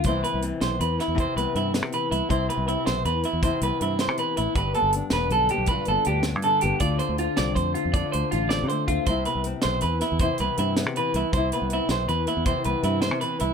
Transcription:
<<
  \new Staff \with { instrumentName = "Clean electric guitar" } { \time 12/8 \key c \major \tempo 4. = 106 c''8 b'8 r8 c''8 b'8 e'8 c''8 b'8 e'8 r8 b'8 e'8 | c''8 b'8 e'8 c''8 b'8 e'8 c''8 b'8 e'8 c''8 b'8 e'8 | b'8 a'8 r8 b'8 a'8 g'8 b'8 a'8 g'8 r8 a'8 g'8 | d''8 c''8 f'8 d''8 c''8 f'8 d''8 c''8 f'8 d''8 c''8 f'8 |
c''8 b'8 r8 c''8 b'8 e'8 c''8 b'8 e'8 r8 b'8 e'8 | c''8 b'8 e'8 c''8 b'8 e'8 c''8 b'8 e'8 c''8 b'8 e'8 | }
  \new Staff \with { instrumentName = "Nylon-string guitar" } { \time 12/8 \key c \major << { <e b c' e'>8 b8 c'8 b4 b8 e'8 b8 c'8 b4 b8 | e'8 b8 c'8 b4 b8 e'8 b8 c'8 b4 b8 | g'8 b8 d'8 b4 b8 f'8 b8 d'8 b4 b8 | f'8 c'8 f'8 c'4 c'8 f'4 f'8 c'4 c'8 |
e'8 b8 c'8 b4 b8 e'8 b8 c'8 b4 b8 | e'8 b8 c'8 b4 b8 e'8 b8 c'8 b4 b8 | } \\ { c2 e4 c2 e4 | c2 e4 c2 e4 | g,2 d4 g,2 d4 | d2 a4 d2 a4 |
c2 e4 c2 e4 | c2 e4 c2 e4 | } >> }
  \new Staff \with { instrumentName = "Fingered electric bass" } { \clef bass \time 12/8 \key c \major c,8 r16 c,8 r16 b,,8 e,8 r16 e,8 r16 c,16 r16 g,8. c8. c,16 r16 | c,8 r16 c,8 r16 b,,8 e,8 r16 e,8 r16 c,16 r16 g,8. c8. a,,16 r16 | g,,8 r16 g,,8 r16 e,,8 b,,8 r16 b,,8 r16 g,,16 r16 d,8. g,8. g,,16 r16 | d,8 r16 d,8 r16 c,8 f,8 r16 f,8 r16 d,16 r16 a,,8. d8. d,16 r16 |
c,8 r16 c,8 r16 b,,8 e,8 r16 e,8 r16 c,16 r16 g,8. c8. c,16 r16 | c,8 r16 c,8 r16 b,,8 e,8 r16 e,8 r16 c,16 r16 g,8. c8. c,16 r16 | }
  \new DrumStaff \with { instrumentName = "Drums" } \drummode { \time 12/8 <hh bd>8 hh8 hh8 <hh sn>8 hh8 <hh sn>8 <hh bd>8 hh8 hh8 <hh sn>8 hh8 hh8 | <hh bd>8 hh8 hh8 <hh sn>8 hh8 hh8 <hh bd>8 hh8 hh8 <hh sn>8 hh8 hh8 | <hh bd>8 hh8 hh8 <hh sn>8 hh8 hh8 <hh bd>8 hh8 hh8 <hh sn>8 hh8 hh8 | <hh bd>8 hh8 hh8 <hh sn>8 <hh bd>8 hh8 <hh bd>8 hh8 hh8 <hh sn>8 hh8 <hh bd>8 |
<hh bd>8 hh8 hh8 <hh sn>8 hh8 <hh sn>8 <hh bd>8 hh8 hh8 <hh sn>8 hh8 hh8 | <hh bd>8 hh8 hh8 <hh sn>8 hh8 hh8 <hh bd>8 hh8 hh8 <hh sn>8 hh8 hh8 | }
>>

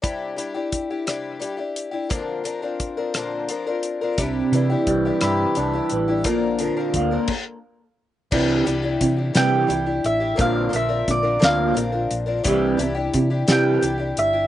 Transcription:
<<
  \new Staff \with { instrumentName = "Mandolin" } { \time 6/8 \key c \mixolydian \tempo 4. = 58 r2. | r2. | r2. | r2. |
r4. g''4 e''8 | f''8 e''8 d''8 f''4 r8 | r4. g''4 e''8 | }
  \new Staff \with { instrumentName = "Twelve-string acoustic guitar" } { \time 6/8 \key c \mixolydian <c g d' e' g'>8 <g d' e' g'>16 <d' e' g'>8 <d' e' g'>16 <c g d' e' g'>8 <g d' e' g'>16 <d' e' g'>8 <d' e' g'>16 | <bes, d f c' d' bes'>8 <f c' d' bes'>16 <f c' d' bes'>8 <f c' d' bes'>16 <bes, d f c' d' bes'>8 <f c' d' bes'>16 <f c' d' bes'>8 <f c' d' bes'>16 | <c g d' e' g'>8 <g d' e' g'>16 <d' e' g'>8 <d' e' g'>16 <c g d' e' g'>8 <g d' e' g'>16 <d' e' g'>8 <d' e' g'>16 | <bes, d f c' d' bes'>8 <f c' d' bes'>16 <f c' d' bes'>8 <f c' d' bes'>16 r4. |
<c g d' e' g'>8 <g d' e' g'>16 <d' e' g'>8 <d' e' g'>16 <c g d' e' g'>8 <g d' e' g'>16 <d' e' g'>8 <d' e' g'>16 | <bes, d f c' d' bes'>8 <f c' d' bes'>16 <f c' d' bes'>8 <f c' d' bes'>16 <bes, d f c' d' bes'>8 <f c' d' bes'>16 <f c' d' bes'>8 <f c' d' bes'>16 | <c g d' e' g'>8 <g d' e' g'>16 <d' e' g'>8 <d' e' g'>16 <c g d' e' g'>8 <g d' e' g'>16 <d' e' g'>8 <d' e' g'>16 | }
  \new Staff \with { instrumentName = "Clean electric guitar" } { \clef bass \time 6/8 \key c \mixolydian r2. | r2. | c8 e8 g8 e'8 d'8 e8 | bes,8 d8 bes8 r4. |
<c e g>8 <c e>8 <c e>8 <c e g>8 <c e>8 r8 | <bes, d bes>8 <bes, d>8 <bes, d>8 <bes, d bes>8 <bes, d>8 r8 | <c e g>8 <c e>8 <c e>8 <c e g>8 <c e>8 r8 | }
  \new Staff \with { instrumentName = "Fingered electric bass" } { \clef bass \time 6/8 \key c \mixolydian r2. | r2. | c,8 c8 c,8 g,8 c,8 a,,8 | bes,,4 d,8 r4. |
c,8 c,8 c8 c8 c,8 a,,8 | bes,,8 bes,,8 bes,,8 d,8 bes,,8 bes,,8 | c,8 c,8 c8 c8 c,8 g,,8 | }
  \new DrumStaff \with { instrumentName = "Drums" } \drummode { \time 6/8 <hh bd>8 hh8 <hh bd>8 <hh ss>8 hh8 hh8 | <hh bd>8 hh8 <hh bd>8 <hh ss>8 hh8 hh8 | <hh bd>8 hh8 <hh bd>8 <hh ss>8 hh8 hh8 | <hh bd>8 hh8 <hh bd>8 <cymc bd>4. |
<cymc bd>8 hh8 <hh bd>8 <hh sn>8 hh8 hh8 | <hh bd>8 hh8 <hh bd>8 <hh sn>8 hh8 hh8 | <hh bd>8 hh8 <hh bd>8 <hh sn>8 hh8 hh8 | }
>>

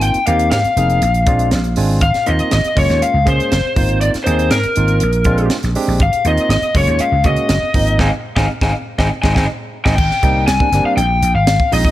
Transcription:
<<
  \new Staff \with { instrumentName = "Lead electric guitar" } { \time 4/4 \key aes \major \tempo 4 = 121 g''8 f''8 f''2 r4 | f''8 ees''8 ees''8 des''8 f''8 c''4. | d''8 c''8 bes'2 r4 | f''8 ees''8 ees''8 des''8 f''8 ees''4. |
<ees'' f'' aes''>16 r8 <ees'' f'' aes''>16 r16 <ees'' f'' aes''>16 r8 <ees'' g'' aes''>16 r16 <ees'' g'' aes''>16 <ees'' g'' aes''>16 r8. <ees'' g'' aes''>16 | g''4 aes''8. f''16 g''8. f''8. ees''8 | }
  \new Staff \with { instrumentName = "Tine electric piano" } { \time 4/4 \key aes \major <bes c' ees' f'>16 r16 <bes c' ees' g'>8 r8 <bes c' ees' aes'>8 r8 <aes c' d' f' d''>8 f''8 <aes c' d' f' aes''>8 | r8 <bes c' ees' f'>8 r8 <aes bes des' f'>8. r16 <aes bes des' aes'>8 r8 <bes c' ees' f'>8~ | <bes c' ees' f'>16 r16 <bes c' ees' aes'>8 r8 <bes c' ees' f'>8 r8 <aes c' d' f'>8 r8 <aes c' d' g'>8 | r8 <bes c' ees' f'>8 r8 <aes bes des' f'>8. r16 <aes bes des' ges'>8 r8 <f bes c' ees'>8 |
<aes c' ees'>16 r8 <aes c' ees'>16 r16 <aes c' ees'>16 r8 <aes c' ees'>16 r16 <aes c' ees'>16 <aes c' ees'>16 r8. <aes c' ees'>16 | r8 <g bes c' ees'>8 r16 <g bes c' d'>16 <g bes c' d'>8 r4. <f aes c' ees'>8 | }
  \new Staff \with { instrumentName = "Slap bass" } { \clef bass \time 4/4 \key aes \major aes,,16 r16 ees,8 aes,16 r16 f,,8 bes,,8 bes,,8 bes,,8 aes,,8 | aes,,16 r16 ees,16 r16 aes,,16 r16 ges,,16 ees,16 r16 des,16 des,16 r16 ges,,16 r16 aes,,8~ | aes,,16 r16 ees,8 aes,16 r16 aes,,8 bes,,8 bes,,8 r16 bes,,16 r16 bes,,16 | aes,,16 r16 ees,16 r16 aes,,16 r16 ges,,16 ees,16 r16 des,16 des,16 r16 ges,,16 r16 aes,,8 |
aes,,16 r8 aes,,16 r16 aes,,16 r8 aes,,16 r16 aes,,16 aes,,16 r8. aes,,16 | aes,,16 r16 c,8 c,16 r16 g,,16 r16 bes,,8 bes,,16 aes,,8 r16 bes,,16 r16 | }
  \new DrumStaff \with { instrumentName = "Drums" } \drummode { \time 4/4 hh16 hh16 hh16 hh16 <hh sn>16 hh16 hh16 hh16 hh16 hh16 <hh bd>16 hh16 <hh sn>16 hh16 hho8 | <hh bd>16 <hh sn>16 hh16 hh16 <hh sn>16 hh16 <hho bd>16 <hh sn>16 hh8 <hh bd>16 hh16 <hh sn>8 <hho bd>16 hh16 | hh16 <hh sn>16 hh16 hh16 <hh sn>16 hh16 hh16 hh16 hh16 hh16 <hh bd>16 hh16 <hh sn>16 <hh sn>16 hho8 | <hh bd>16 hh16 hh16 hh16 <hh sn>16 hh16 <hho bd>16 hh16 hh8 <hh bd>16 hh16 <hh sn>8 <hho bd>16 hh16 |
<bd sn>8. <bd sn>16 r16 <bd sn>8. <bd sn>8 <bd sn>16 <bd sn>16 r8. <bd sn>16 | <cymc bd>16 sn16 <hh bd>8 <hh sn>16 bd16 <hh sn>8 hh8 hh8 <hh sn>16 bd16 hho16 bd16 | }
>>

